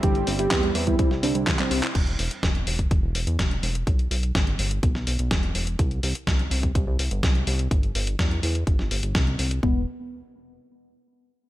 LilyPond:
<<
  \new Staff \with { instrumentName = "Soft synth lead" } { \time 4/4 \key e \minor \tempo 4 = 125 g'8 r16 g'8. r16 e'8 r16 d'8 r16 c'8 r16 | r1 | r1 | r1 |
r1 | b8 r2. r8 | }
  \new Staff \with { instrumentName = "Analog synth pad" } { \time 4/4 \key e \minor <g c' e'>1 | r1 | r1 | r1 |
r1 | r1 | }
  \new Staff \with { instrumentName = "Synth arpeggio sound" } { \time 4/4 \key e \minor e16 g16 c'16 e'16 c'16 g16 e16 g16 c'16 e'16 c'16 g16 e16 g16 c'16 e'16 | r1 | r1 | r1 |
r1 | r1 | }
  \new Staff \with { instrumentName = "Analog synth bass" } { \clef bass \time 4/4 \key e \minor g,,8 g,,8 e,8 e,8 c,16 c,16 c,16 c,16 c,16 r16 c,16 r16 | e,,8 e,,16 r16 e,,8 e,,8 e,,16 e,,16 e,,16 e,16 e,,8 e,,8 | b,,8 b,,8 g,,8 g,,8 b,,16 b,,16 b,,16 b,,16 e,,8 e,,8 | c,8 c,16 r16 c,8 c,8 c,16 c,16 c,16 g,,16 c,8 c,8 |
g,,8 g,,8 e,8 e,8 g,,16 g,,16 g,,16 g,,16 c,8 c,8 | e,,8 r2. r8 | }
  \new DrumStaff \with { instrumentName = "Drums" } \drummode { \time 4/4 <hh bd>16 hh16 hho16 hh16 <hc hh bd sn>16 hh16 hho16 <hh bd>16 <hh bd>16 sn16 hho16 hh16 <hc hh bd sn>16 <hc hh>16 hho16 <hc hh>16 | <cymc hh bd>16 hh16 hho16 hh16 <hh bd sn>16 hh16 hho16 <hh bd>16 <hh bd>8 hho16 hh16 <hh bd sn>16 hh16 hho16 hh16 | <hh bd>16 hh16 hho16 hh16 <hh bd sn>16 hh16 hho16 hh16 <hh bd>16 sn16 hho16 hh16 <hh bd sn>16 hh16 hho16 hh16 | <hh bd>16 hh16 hho16 hh16 <hh bd sn>16 hh16 hho16 <hh bd>16 <hh bd>8 hho16 hh16 <hh bd sn>16 hh16 hho16 hh16 |
<hh bd>16 hh16 hho16 hh16 <hh bd sn>16 hh16 hho16 hh16 <hh bd>16 sn16 hho16 hh16 <hh bd sn>16 hh16 hho16 hh16 | bd4 r4 r4 r4 | }
>>